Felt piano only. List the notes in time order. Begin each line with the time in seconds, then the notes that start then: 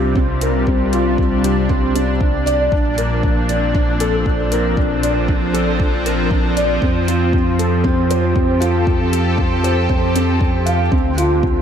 Already playing: C4 F4 G4 A#4
0.16 C4
0.42 A#4
0.67 C4
0.93 F4
1.18 C4
1.44 G4
1.69 C4
1.95 C4
2.20 D4
2.46 D5
2.72 D4
2.98 A#4
3.24 D4
3.49 D5
3.75 D4
4.00 A4
4.26 D4
4.52 A#4
4.77 D4
5.03 D5
5.28 D4
5.54 A4
5.79 D4
6.05 A#4
6.31 D4
6.57 D5
6.83 C4
7.08 F4
7.34 C4
7.59 A4
7.84 C4
8.10 C5
8.35 C4
8.60 F4
8.87 C4
9.12 A4
9.38 C4
9.64 C5
9.90 C4
10.15 C4
10.41 C4
10.66 F5
10.91 C4
11.17 F4
11.43 C4